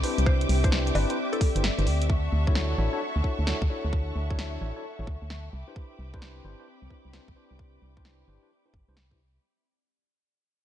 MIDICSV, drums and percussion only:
0, 0, Header, 1, 2, 480
1, 0, Start_track
1, 0, Tempo, 458015
1, 276, Time_signature, 4, 2, 24, 8
1, 11159, End_track
2, 0, Start_track
2, 0, Title_t, "Drums"
2, 37, Note_on_c, 9, 46, 82
2, 142, Note_off_c, 9, 46, 0
2, 192, Note_on_c, 9, 42, 57
2, 277, Note_on_c, 9, 26, 62
2, 277, Note_on_c, 9, 36, 112
2, 297, Note_off_c, 9, 42, 0
2, 381, Note_off_c, 9, 36, 0
2, 382, Note_off_c, 9, 26, 0
2, 432, Note_on_c, 9, 42, 47
2, 517, Note_on_c, 9, 46, 93
2, 537, Note_off_c, 9, 42, 0
2, 622, Note_off_c, 9, 46, 0
2, 672, Note_on_c, 9, 36, 105
2, 672, Note_on_c, 9, 42, 58
2, 756, Note_on_c, 9, 38, 112
2, 776, Note_off_c, 9, 36, 0
2, 777, Note_off_c, 9, 42, 0
2, 861, Note_off_c, 9, 38, 0
2, 912, Note_on_c, 9, 42, 49
2, 998, Note_on_c, 9, 46, 81
2, 998, Note_on_c, 9, 60, 78
2, 1017, Note_off_c, 9, 42, 0
2, 1102, Note_off_c, 9, 46, 0
2, 1102, Note_off_c, 9, 60, 0
2, 1152, Note_on_c, 9, 42, 59
2, 1257, Note_off_c, 9, 42, 0
2, 1393, Note_on_c, 9, 42, 33
2, 1476, Note_on_c, 9, 36, 99
2, 1478, Note_on_c, 9, 46, 93
2, 1498, Note_off_c, 9, 42, 0
2, 1581, Note_off_c, 9, 36, 0
2, 1582, Note_off_c, 9, 46, 0
2, 1633, Note_on_c, 9, 42, 59
2, 1717, Note_on_c, 9, 38, 118
2, 1738, Note_off_c, 9, 42, 0
2, 1822, Note_off_c, 9, 38, 0
2, 1872, Note_on_c, 9, 42, 34
2, 1957, Note_on_c, 9, 46, 82
2, 1977, Note_off_c, 9, 42, 0
2, 2062, Note_off_c, 9, 46, 0
2, 2112, Note_on_c, 9, 42, 60
2, 2196, Note_on_c, 9, 36, 102
2, 2217, Note_off_c, 9, 42, 0
2, 2301, Note_off_c, 9, 36, 0
2, 2592, Note_on_c, 9, 36, 96
2, 2677, Note_on_c, 9, 38, 110
2, 2696, Note_off_c, 9, 36, 0
2, 2781, Note_off_c, 9, 38, 0
2, 3396, Note_on_c, 9, 36, 57
2, 3501, Note_off_c, 9, 36, 0
2, 3637, Note_on_c, 9, 38, 115
2, 3741, Note_off_c, 9, 38, 0
2, 3792, Note_on_c, 9, 36, 99
2, 3896, Note_off_c, 9, 36, 0
2, 4116, Note_on_c, 9, 36, 102
2, 4221, Note_off_c, 9, 36, 0
2, 4512, Note_on_c, 9, 36, 93
2, 4597, Note_on_c, 9, 38, 111
2, 4616, Note_off_c, 9, 36, 0
2, 4702, Note_off_c, 9, 38, 0
2, 5316, Note_on_c, 9, 36, 92
2, 5421, Note_off_c, 9, 36, 0
2, 5557, Note_on_c, 9, 38, 104
2, 5661, Note_off_c, 9, 38, 0
2, 6036, Note_on_c, 9, 36, 101
2, 6141, Note_off_c, 9, 36, 0
2, 6431, Note_on_c, 9, 36, 88
2, 6517, Note_on_c, 9, 38, 105
2, 6536, Note_off_c, 9, 36, 0
2, 6622, Note_off_c, 9, 38, 0
2, 7236, Note_on_c, 9, 36, 53
2, 7341, Note_off_c, 9, 36, 0
2, 7476, Note_on_c, 9, 38, 109
2, 7581, Note_off_c, 9, 38, 0
2, 7631, Note_on_c, 9, 36, 90
2, 7736, Note_off_c, 9, 36, 0
2, 7956, Note_on_c, 9, 36, 100
2, 8061, Note_off_c, 9, 36, 0
2, 8352, Note_on_c, 9, 36, 91
2, 8437, Note_on_c, 9, 38, 104
2, 8456, Note_off_c, 9, 36, 0
2, 8541, Note_off_c, 9, 38, 0
2, 9156, Note_on_c, 9, 36, 96
2, 9261, Note_off_c, 9, 36, 0
2, 9397, Note_on_c, 9, 38, 106
2, 9502, Note_off_c, 9, 38, 0
2, 9551, Note_on_c, 9, 36, 54
2, 9656, Note_off_c, 9, 36, 0
2, 11159, End_track
0, 0, End_of_file